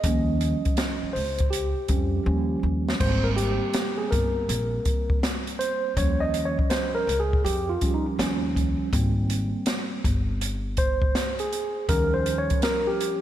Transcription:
Already playing: D#5
0.04 D#2 F3 G3 C#4, kick, closed hi-hat
0.41 closed hi-hat
0.65 kick, closed hi-hat
0.77 snare, closed hi-hat
1.02 muted upright bass stroke
1.13 C#2 C5, open hi-hat
1.38 kick, closed hi-hat
1.50 G4, closed hi-hat
1.88 F2 F3 G3 C#4, kick, closed hi-hat
2.26 D#2 F3 G3 C#4
2.63 D#2
2.89 snare
3.00 G#1 G3 A#3 C4 C5, kick, crash
3.24 A#4
3.36 G4, closed hi-hat
3.74 snare, closed hi-hat
3.98 G#4
4.11 G1 A#4, kick, closed hi-hat
4.49 A#1, closed hi-hat
4.85 kick, closed hi-hat
5.10 kick
5.23 snare, closed hi-hat
5.47 closed hi-hat
5.59 C5, closed hi-hat
5.97 D#2 F3 G3 C#4 C#5, kick, closed hi-hat
6.20 D5 D#5
6.34 closed hi-hat
6.45 C#5
6.59 kick
6.70 C5, snare, closed hi-hat
6.95 A#4
7.07 C#2, closed hi-hat
7.20 G#4
7.33 kick
7.44 F2 G4, closed hi-hat
7.69 F4
7.81 F3 G3 C#4, kick, closed hi-hat
7.94 D#4
8.18 D#2 F3 G3 C#4, snare, closed hi-hat
8.56 kick, closed hi-hat
8.92 G#1 G3 A#3 C4, kick, closed hi-hat
9.30 closed hi-hat
9.66 snare, closed hi-hat
10.04 G1, kick, closed hi-hat
10.41 closed hi-hat
10.77 C5, kick, closed hi-hat
11.02 kick
11.15 snare, closed hi-hat
11.39 G#4, closed hi-hat
11.53 closed hi-hat
11.89 D#2 F3 G3 C#4 A#4, kick, closed hi-hat
12.14 C5
12.26 closed hi-hat
12.38 C#5
12.50 kick, closed hi-hat
12.62 A#4, snare, closed hi-hat
12.87 G4
13.01 closed hi-hat

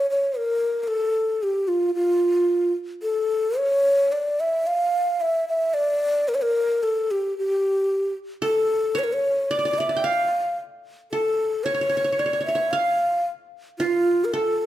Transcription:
0.10 C#5
0.37 A#4
0.83 A#4
0.88 A4
1.43 G4
1.68 F4
1.95 F4
3.03 A4
3.58 C#5
4.12 D5
4.40 E5
4.67 F5
5.21 E5
5.48 E5
5.74 D5
6.28 A#4
6.35 C#5
6.42 A#4
6.83 A4
7.11 G4
7.38 G4
8.42 A4
8.95 C#5
9.04 A#4
9.13 C#5
9.51 D5
9.59 D5
9.65 D5
9.73 D5
9.78 D5 E5
9.89 D5
9.96 G5
10.04 F5
11.12 A4
11.64 C#5
11.74 C#5
11.81 C#5
11.90 C#5
11.97 C#5
12.04 C#5
12.12 C#5
12.19 C#5 D5
12.26 C#5
12.33 C#5
12.41 C#5
12.46 C#5 E5
12.55 C#5
12.71 F5
13.79 F4
14.25 A#4
14.33 A4

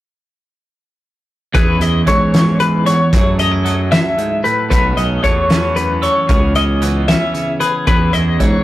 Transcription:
1.54 E2 C#4 E4 G#4 B4, kick, closed hi-hat
1.80 E2 E4 D#5, closed hi-hat
2.07 G#2 E3 C#4 C#5, kick, closed hi-hat
2.34 snare, closed hi-hat
2.60 B4, closed hi-hat
2.86 E2 C#5, closed hi-hat
3.13 F#2 A3 E4 G#4, kick, closed hi-hat
3.39 C#4 D#5, closed hi-hat
3.52 E4
3.64 F#3 A3, closed hi-hat
3.91 F#2 E5, snare, closed hi-hat
4.18 G#2, closed hi-hat
4.44 A2 B4, closed hi-hat
4.70 B1 B2 A3 C#4 F#4 B4, kick, closed hi-hat
4.97 B1 C#4 D#5, closed hi-hat
5.23 E2 E3 A3 C#5, kick, closed hi-hat
5.50 C#4, snare, closed hi-hat
5.76 F#2 B4, closed hi-hat
6.02 A4 C#5, closed hi-hat
6.29 C#2 C#3 B3 C#4 G#4, kick, closed hi-hat
6.55 C#4 D#5, closed hi-hat
6.82 E3 B3, closed hi-hat
7.08 C#4 E5, snare, closed hi-hat
7.34 C#3, closed hi-hat
7.60 G#4 B4, closed hi-hat
7.87 E2 C#4 E4 G#4 B4, kick, closed hi-hat
8.13 E2 E4 D#5, closed hi-hat
8.40 G#2 E3 C#4 C#5, kick, closed hi-hat

